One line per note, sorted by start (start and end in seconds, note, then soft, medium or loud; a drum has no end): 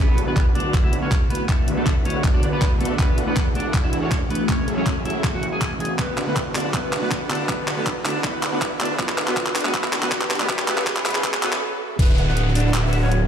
0.00 2.97 D1 medium
0.00 5.95 A3 medium
0.00 0.17 B3 medium
0.00 0.17 B4 medium
0.00 2.96 D5 medium
0.00 2.96 F#5 medium
0.00 2.96 B5 medium
0.00 riser medium
0.18 0.91 D3 medium
0.18 0.91 D4 medium
0.18 0.91 F#4 medium
0.18 0.91 B4 medium
0.18 0.91 F#5 medium
0.18 closed hi-hat medium
0.26 0.34 D3 medium
0.26 0.34 A3 medium
0.26 0.45 B3 medium
0.26 0.34 B3 medium
0.26 0.35 F#4 loud
0.26 0.45 B4 medium
0.37 kick medium
0.37 clap soft
0.37 closed hi-hat medium
0.55 0.62 D3 medium
0.55 0.62 A3 medium
0.55 0.63 B3 medium
0.55 0.73 D4 medium
0.55 0.63 F#4 medium
0.55 0.73 D5 medium
0.55 closed hi-hat soft
0.60 closed hi-hat medium
0.74 kick medium
0.74 clap soft
0.74 closed hi-hat medium
0.82 1.00 D3 loud
0.82 1.00 A3 medium
0.82 1.00 B3 medium
0.82 0.95 E4 medium
0.82 1.01 F#4 loud
0.82 0.95 E5 medium
0.93 1.09 D3 medium
0.93 1.09 D4 medium
0.93 1.09 F#4 medium
0.93 1.09 B4 medium
0.93 1.09 F#5 medium
0.93 closed hi-hat medium
1.02 1.13 D3 medium
1.02 1.13 A3 medium
1.02 1.14 B3 medium
1.02 1.20 C#4 medium
1.02 1.14 F#4 loud
1.02 1.20 C#5 medium
1.12 kick medium
1.12 clap soft
1.12 closed hi-hat medium
1.29 1.46 D3 medium
1.29 1.47 A3 medium
1.29 1.42 B3 medium
1.29 1.47 B3 medium
1.29 1.47 F#4 loud
1.29 1.42 B4 medium
1.29 closed hi-hat medium
1.35 closed hi-hat medium
1.48 1.56 D3 medium
1.48 1.56 A3 medium
1.48 1.67 A3 medium
1.48 1.56 B3 medium
1.48 1.67 A4 medium
1.48 kick medium
1.48 clap soft
1.48 closed hi-hat medium
1.68 2.22 D3 medium
1.68 2.22 D4 medium
1.68 2.22 F#4 medium
1.68 2.22 B4 medium
1.68 2.22 E5 medium
1.68 closed hi-hat medium
1.76 1.84 D3 medium
1.76 1.84 A3 medium
1.76 1.95 A3 medium
1.76 1.84 B3 medium
1.76 1.85 F#4 loud
1.76 1.95 A4 medium
1.87 kick medium
1.87 clap medium
1.87 closed hi-hat medium
2.04 2.12 D3 medium
2.04 2.12 A3 medium
2.04 2.13 B3 medium
2.04 2.23 C#4 medium
2.04 2.13 F#4 medium
2.04 2.23 C#5 medium
2.04 closed hi-hat soft
2.10 closed hi-hat medium
2.24 2.34 D3 medium
2.24 2.34 D4 medium
2.24 2.34 F#4 medium
2.24 2.34 B4 medium
2.24 2.34 A5 medium
2.24 kick loud
2.24 clap medium
2.24 closed hi-hat medium
2.33 2.50 D3 loud
2.33 2.50 A3 medium
2.33 2.50 B3 medium
2.33 2.45 D4 medium
2.33 2.51 F#4 loud
2.33 2.45 D5 medium
2.43 2.69 D3 medium
2.43 2.69 D4 medium
2.43 2.69 F#4 medium
2.43 2.69 B4 medium
2.43 2.69 D5 medium
2.43 closed hi-hat medium
2.51 2.63 D3 medium
2.51 2.63 A3 medium
2.51 2.70 B3 medium
2.51 2.63 B3 medium
2.51 2.64 F#4 loud
2.51 2.70 B4 medium
2.62 kick loud
2.62 clap medium
2.62 closed hi-hat medium
2.71 2.97 D3 loud
2.71 2.97 D4 medium
2.71 2.97 F#4 medium
2.71 2.97 B4 medium
2.71 2.97 E5 loud
2.79 2.96 D3 loud
2.79 2.97 A3 medium
2.79 2.92 A3 medium
2.79 2.97 B3 medium
2.79 2.97 F#4 loud
2.79 2.92 A4 medium
2.79 closed hi-hat medium
2.85 closed hi-hat medium
2.98 4.47 E1 medium
2.98 3.06 E3 medium
2.98 3.09 E3 medium
2.98 3.06 A3 medium
2.98 3.17 B3 medium
2.98 3.09 D4 medium
2.98 3.06 D4 medium
2.98 3.09 F#4 medium
2.98 3.07 F#4 medium
2.98 3.09 A4 medium
2.98 3.17 B4 medium
2.98 4.48 E5 medium
2.98 3.09 E5 medium
2.98 4.48 F#5 medium
2.98 4.48 D6 medium
2.98 kick medium
2.98 clap medium
2.98 closed hi-hat medium
3.18 3.91 E3 medium
3.18 3.91 D4 medium
3.18 3.91 F#4 medium
3.18 3.91 A4 medium
3.18 3.91 F#5 medium
3.18 closed hi-hat medium
3.27 3.34 E3 medium
3.27 3.34 A3 medium
3.27 3.45 B3 medium
3.27 3.35 D4 medium
3.27 3.35 F#4 loud
3.27 3.45 B4 loud
3.37 kick loud
3.37 clap medium
3.37 closed hi-hat medium
3.54 3.62 E3 medium
3.54 3.62 A3 medium
3.54 3.73 D4 medium
3.54 3.63 D4 medium
3.54 3.63 F#4 medium
3.54 3.73 D5 medium
3.54 closed hi-hat medium
3.60 closed hi-hat medium
3.74 kick loud
3.74 clap medium
3.74 closed hi-hat medium
3.82 3.99 E3 loud
3.82 4.00 A3 medium
3.82 4.00 D4 medium
3.82 3.95 E4 medium
3.82 4.00 F#4 loud
3.82 3.95 E5 medium
3.93 4.09 E3 medium
3.93 4.09 D4 medium
3.93 4.09 F#4 medium
3.93 4.09 A4 medium
3.93 4.09 F#5 medium
3.93 closed hi-hat medium
4.01 4.13 E3 medium
4.01 4.13 A3 medium
4.01 4.20 C#4 medium
4.01 4.13 D4 medium
4.01 4.14 F#4 loud
4.01 4.20 C#5 medium
4.11 kick medium
4.11 clap medium
4.11 closed hi-hat medium
4.29 4.46 E3 medium
4.29 4.47 A3 medium
4.29 4.42 B3 medium
4.29 4.47 D4 medium
4.29 4.47 F#4 loud
4.29 4.42 B4 medium
4.29 closed hi-hat medium
4.35 closed hi-hat medium
4.48 5.97 F#1 medium
4.48 4.56 E3 medium
4.48 4.56 A3 medium
4.48 4.67 C#4 medium
4.48 4.67 C#5 loud
4.48 5.98 E5 medium
4.48 11.58 F#5 medium
4.48 5.98 C#6 medium
4.48 kick loud
4.48 clap medium
4.48 closed hi-hat medium
4.68 5.22 F#3 medium
4.68 5.22 C#4 medium
4.68 5.22 G#4 medium
4.68 5.22 A4 medium
4.68 5.22 E5 medium
4.68 closed hi-hat medium
4.76 4.84 E3 medium
4.76 4.84 A3 medium
4.76 4.95 C#4 medium
4.76 4.84 C#4 medium
4.76 4.85 F#4 loud
4.76 4.95 C#5 medium
4.86 kick loud
4.86 clap medium
4.86 closed hi-hat medium
5.04 5.12 E3 medium
5.04 5.12 A3 medium
5.04 5.13 C#4 medium
5.04 5.23 E4 medium
5.04 5.13 F#4 medium
5.04 5.23 E5 medium
5.04 closed hi-hat soft
5.10 closed hi-hat medium
5.24 5.34 F#3 medium
5.24 5.34 C#4 medium
5.24 5.34 G#4 medium
5.24 5.34 A4 medium
5.24 5.34 G#5 medium
5.24 kick loud
5.24 clap medium
5.24 closed hi-hat medium
5.33 5.41 E3 loud
5.33 5.41 A3 medium
5.33 5.41 C#4 medium
5.33 5.45 F#4 medium
5.33 5.42 F#4 loud
5.33 5.45 F#5 medium
5.42 5.69 E3 medium
5.42 5.69 A3 medium
5.42 5.69 C#4 medium
5.42 5.70 F#4 medium
5.42 closed hi-hat medium
5.52 5.70 G#4 medium
5.52 5.70 G#5 loud
5.61 kick loud
5.61 clap medium
5.61 closed hi-hat medium
5.70 5.78 E3 medium
5.70 5.78 A3 medium
5.70 5.78 C#4 medium
5.70 5.78 F#4 medium
5.79 5.97 E3 loud
5.79 5.97 A3 medium
5.79 5.97 C#4 medium
5.79 5.98 F#4 loud
5.79 5.92 G#4 medium
5.79 5.92 G#5 medium
5.79 closed hi-hat soft
5.85 closed hi-hat medium
5.98 8.97 D1 medium
5.98 6.06 D3 medium
5.98 6.09 D3 medium
5.98 6.17 B3 medium
5.98 6.09 D4 medium
5.98 6.09 F#4 medium
5.98 11.58 A4 medium
5.98 6.09 B4 medium
5.98 6.17 B4 medium
5.98 8.96 D5 medium
5.98 6.09 E5 medium
5.98 8.96 B5 medium
5.98 kick loud
5.98 clap medium
5.98 closed hi-hat medium
6.18 6.73 D3 medium
6.18 6.73 D4 medium
6.18 6.73 F#4 medium
6.18 6.73 B4 medium
6.18 6.73 F#5 medium
6.18 clap medium
6.18 closed hi-hat medium
6.27 6.34 D3 medium
6.27 6.34 A3 medium
6.27 6.34 B3 medium
6.27 6.45 B3 medium
6.27 6.35 F#4 medium
6.27 6.45 B4 medium
6.36 kick loud
6.36 clap medium
6.36 closed hi-hat medium
6.54 6.62 D3 medium
6.54 6.62 A3 medium
6.54 6.62 B3 medium
6.54 6.73 D4 medium
6.54 6.63 F#4 medium
6.54 6.73 D5 medium
6.54 clap medium
6.54 open hi-hat medium
6.60 closed hi-hat medium
6.73 6.81 D3 medium
6.73 6.84 D3 medium
6.73 6.81 A3 medium
6.73 6.81 B3 medium
6.73 6.92 B3 medium
6.73 6.84 D4 medium
6.73 6.84 F#4 medium
6.73 6.82 F#4 medium
6.73 6.84 B4 medium
6.73 6.92 B4 medium
6.73 6.84 E5 medium
6.73 kick loud
6.73 clap medium
6.73 closed hi-hat medium
6.93 7.48 D3 medium
6.93 7.48 D4 medium
6.93 7.48 F#4 medium
6.93 7.48 B4 medium
6.93 7.48 F#5 medium
6.93 clap medium
6.93 closed hi-hat medium
7.01 7.09 D3 medium
7.01 7.09 A3 medium
7.01 7.20 B3 medium
7.01 7.09 B3 medium
7.01 7.10 F#4 medium
7.01 7.20 B4 medium
7.11 kick medium
7.11 clap medium
7.11 closed hi-hat medium
7.29 7.37 D3 medium
7.29 7.37 A3 medium
7.29 7.38 B3 medium
7.29 7.48 D4 medium
7.29 7.38 F#4 medium
7.29 7.48 D5 medium
7.29 clap medium
7.29 closed hi-hat soft
7.35 closed hi-hat medium
7.48 7.56 D3 medium
7.48 7.59 D3 medium
7.48 7.56 A3 medium
7.48 7.67 B3 medium
7.48 7.56 B3 medium
7.48 7.59 D4 medium
7.48 7.59 F#4 medium
7.48 7.57 F#4 medium
7.48 7.67 B4 medium
7.48 7.59 B4 medium
7.48 7.59 E5 medium
7.48 kick loud
7.48 clap medium
7.48 closed hi-hat medium
7.68 8.23 D3 medium
7.68 8.23 D4 medium
7.68 8.23 F#4 medium
7.68 8.23 B4 medium
7.68 8.23 F#5 medium
7.68 clap medium
7.68 closed hi-hat medium
7.76 7.84 D3 medium
7.76 7.84 A3 medium
7.76 7.95 B3 medium
7.76 7.84 B3 medium
7.76 7.85 F#4 loud
7.76 7.95 B4 medium
7.87 kick loud
7.87 clap medium
7.87 closed hi-hat medium
8.04 8.12 D3 medium
8.04 8.12 A3 medium
8.04 8.13 B3 medium
8.04 8.23 D4 medium
8.04 8.13 F#4 medium
8.04 8.23 D5 medium
8.04 clap medium
8.04 open hi-hat medium
8.10 closed hi-hat medium
8.23 8.31 D3 medium
8.23 8.34 D3 medium
8.23 8.31 A3 medium
8.23 8.42 B3 medium
8.23 8.31 B3 medium
8.23 8.34 D4 medium
8.23 8.34 F#4 medium
8.23 8.32 F#4 medium
8.23 8.42 B4 loud
8.23 8.34 B4 medium
8.23 8.34 E5 medium
8.23 kick loud
8.23 clap medium
8.23 closed hi-hat medium
8.43 8.98 D3 medium
8.43 8.98 D4 medium
8.43 8.98 F#4 medium
8.43 8.98 B4 medium
8.43 8.98 F#5 medium
8.43 clap medium
8.43 closed hi-hat medium
8.51 8.59 D3 medium
8.51 8.59 A3 medium
8.51 8.70 B3 medium
8.51 8.59 B3 medium
8.51 8.60 F#4 medium
8.51 8.70 B4 medium
8.62 kick medium
8.62 clap medium
8.62 closed hi-hat medium
8.80 8.87 D3 medium
8.80 8.87 A3 medium
8.80 8.88 B3 medium
8.80 8.98 D4 medium
8.80 8.88 F#4 medium
8.80 8.98 D5 medium
8.80 clap medium
8.80 closed hi-hat soft
8.85 closed hi-hat medium
8.98 10.47 E1 medium
8.98 9.06 D3 medium
8.98 9.09 D3 medium
8.98 9.06 A3 medium
8.98 9.06 B3 medium
8.98 9.17 B3 medium
8.98 9.09 D4 medium
8.98 9.09 F#4 medium
8.98 9.07 F#4 medium
8.98 9.09 B4 medium
8.98 9.17 B4 medium
8.98 11.59 E5 medium
8.98 9.09 E5 medium
8.98 10.48 D6 medium
8.98 kick loud
8.98 clap medium
8.98 closed hi-hat medium
9.09 clap medium
9.18 9.35 D3 medium
9.18 9.35 D4 medium
9.18 9.35 F#4 medium
9.18 9.35 B4 medium
9.18 9.35 F#5 medium
9.18 clap medium
9.18 closed hi-hat medium
9.27 9.34 D3 medium
9.27 9.34 A3 medium
9.27 9.35 B3 medium
9.27 9.35 F#4 loud
9.27 9.35 B4 medium
9.27 clap medium
9.36 9.43 D3 medium
9.36 9.47 D3 medium
9.36 9.44 A3 medium
9.36 9.44 B3 medium
9.36 9.54 B3 medium
9.36 9.47 D4 medium
9.36 9.47 F#4 medium
9.36 9.44 F#4 loud
9.36 9.47 B4 medium
9.36 9.54 B4 medium
9.36 9.47 E5 medium
9.36 kick loud
9.36 clap medium
9.36 closed hi-hat medium
9.46 clap medium
9.55 9.73 D3 medium
9.55 9.73 D4 medium
9.55 9.73 F#4 medium
9.55 9.73 B4 medium
9.55 9.73 F#5 medium
9.55 clap loud
9.55 open hi-hat medium
9.60 9.71 D3 medium
9.60 closed hi-hat medium
9.64 9.72 A3 medium
9.64 9.73 B3 medium
9.64 9.72 B3 medium
9.64 9.72 F#4 loud
9.64 9.73 B4 medium
9.64 clap medium
9.73 9.81 D3 medium
9.73 9.84 D3 medium
9.73 9.81 A3 medium
9.73 9.92 B3 medium
9.73 9.84 D4 medium
9.73 9.84 F#4 medium
9.73 9.92 B4 loud
9.73 9.84 B4 medium
9.73 9.84 E5 medium
9.73 kick loud
9.73 clap medium
9.73 closed hi-hat medium
9.84 clap medium
9.93 10.10 D3 medium
9.93 10.10 D4 medium
9.93 10.10 F#4 medium
9.93 10.10 B4 medium
9.93 10.10 F#5 medium
9.93 clap loud
9.93 closed hi-hat medium
10.02 10.09 D3 medium
10.02 10.09 A3 medium
10.02 10.10 B3 medium
10.02 10.10 F#4 loud
10.02 10.10 B4 loud
10.02 clap medium
10.11 10.18 D3 medium
10.11 10.22 D3 medium
10.11 10.19 A3 medium
10.11 10.29 B3 medium
10.11 10.22 D4 medium
10.11 10.22 F#4 medium
10.11 10.19 F#4 medium
10.11 10.29 B4 loud
10.11 10.22 B4 medium
10.11 10.22 E5 medium
10.11 kick loud
10.11 clap loud
10.11 closed hi-hat medium
10.21 clap medium
10.30 10.48 D3 medium
10.30 10.48 D4 medium
10.30 10.48 F#4 medium
10.30 10.48 B4 medium
10.30 10.48 F#5 medium
10.30 clap loud
10.30 closed hi-hat medium
10.35 10.46 D3 medium
10.35 closed hi-hat medium
10.40 10.47 A3 medium
10.40 10.48 B3 medium
10.40 10.47 B3 medium
10.40 10.47 F#4 loud
10.40 10.48 B4 medium
10.40 clap medium
10.49 11.62 F#1 medium
10.49 10.56 C#3 medium
10.49 10.59 C#3 medium
10.49 10.56 A3 medium
10.49 10.67 B3 medium
10.49 10.57 B3 medium
10.49 10.59 C#4 medium
10.49 10.59 F#4 medium
10.49 10.57 F#4 medium
10.49 10.59 B4 medium
10.49 10.67 B4 loud
10.49 10.59 E5 medium
10.49 kick loud
10.49 clap loud
10.49 closed hi-hat medium
10.59 clap medium
10.67 10.75 C#3 medium
10.67 10.78 C#3 medium
10.67 10.75 A3 medium
10.67 10.75 B3 medium
10.67 10.85 B3 medium
10.67 10.78 C#4 medium
10.67 10.78 F#4 medium
10.67 10.76 F#4 medium
10.67 10.78 B4 medium
10.67 10.85 B4 loud
10.67 10.78 E5 medium
10.67 clap loud
10.67 closed hi-hat medium
10.78 clap medium
10.86 10.93 C#3 medium
10.86 10.97 C#3 medium
10.86 10.94 A3 medium
10.86 10.94 B3 medium
10.86 10.97 C#4 medium
10.86 10.97 F#4 medium
10.86 10.94 F#4 loud
10.86 11.04 B4 loud
10.86 10.97 B4 medium
10.86 10.97 E5 medium
10.86 kick loud
10.86 clap loud
10.86 closed hi-hat medium
10.97 clap medium
11.05 11.12 C#3 medium
11.05 11.15 C#3 medium
11.05 11.12 A3 medium
11.05 11.23 B3 medium
11.05 11.13 B3 medium
11.05 11.15 C#4 medium
11.05 11.15 F#4 medium
11.05 11.13 F#4 medium
11.05 11.23 B4 loud
11.05 11.15 B4 medium
11.05 11.15 E5 medium
11.05 clap loud
11.05 open hi-hat loud
11.11 closed hi-hat medium
11.15 clap medium
11.23 11.31 C#3 medium
11.23 11.34 C#3 medium
11.23 11.31 A3 medium
11.23 11.31 B3 medium
11.23 11.42 B3 medium
11.23 11.34 C#4 medium
11.23 11.34 F#4 medium
11.23 11.32 F#4 medium
11.23 11.34 B4 medium
11.23 11.42 B4 loud
11.23 11.34 E5 medium
11.23 kick loud
11.23 clap loud
11.23 closed hi-hat medium
11.34 clap medium
11.42 11.50 C#3 medium
11.42 11.53 C#3 medium
11.42 11.50 A3 medium
11.42 11.50 B3 medium
11.42 11.60 B3 medium
11.42 11.53 C#4 medium
11.42 11.53 F#4 medium
11.42 11.51 F#4 loud
11.42 11.53 B4 medium
11.42 11.60 B4 loud
11.42 11.53 E5 medium
11.42 clap loud
11.42 closed hi-hat medium
11.53 clap loud
11.99 13.27 D1 medium
11.99 12.09 D3 medium
11.99 13.27 D3 medium
11.99 13.27 A3 medium
11.99 13.27 B3 medium
11.99 12.17 B3 medium
11.99 12.09 D4 medium
11.99 12.09 F#4 medium
11.99 13.27 F#4 medium
11.99 12.09 B4 medium
11.99 12.17 B4 medium
11.99 12.09 E5 medium
11.99 kick loud
11.99 closed hi-hat medium
11.99 crash loud
11.99 downlifter medium
12.18 12.91 D3 medium
12.18 12.91 D4 medium
12.18 12.91 F#4 medium
12.18 12.91 B4 medium
12.18 12.91 F#5 medium
12.18 closed hi-hat medium
12.28 12.45 B3 medium
12.28 12.45 B4 medium
12.37 closed hi-hat medium
12.55 12.73 D4 medium
12.55 12.73 D5 medium
12.55 open hi-hat loud
12.60 closed hi-hat medium
12.74 clap loud
12.74 closed hi-hat medium
12.83 12.95 E4 medium
12.83 12.95 E5 medium
12.93 13.09 D3 medium
12.93 13.09 D4 medium
12.93 13.09 F#4 medium
12.93 13.09 B4 medium
12.93 13.09 F#5 medium
12.93 13.09 F#5 loud
12.93 closed hi-hat medium
13.02 13.20 C#4 medium
13.02 13.20 C#5 loud
13.12 closed hi-hat medium